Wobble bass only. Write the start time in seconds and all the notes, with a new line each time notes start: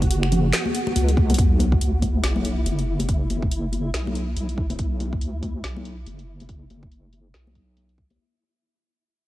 Already playing: F#1
0.96 C#2
1.38 B1
1.81 D2
2.24 B1
2.66 F#1
3.94 B1
4.36 B1
4.79 B1
5.22 D2
5.64 B1
6.07 F#1
7.34 B1